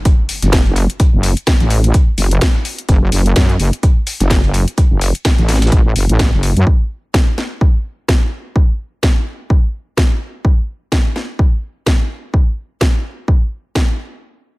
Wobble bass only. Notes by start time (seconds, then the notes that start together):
0.43 F#1
1.13 F#1
1.60 A1
2.18 F#1
2.89 F#1
3.12 F#1
3.36 F#2
3.60 F#1
4.20 F#1
4.91 F#1
5.39 A1
5.72 A1
5.96 F#1
6.09 A1
6.33 F#1
6.57 F#2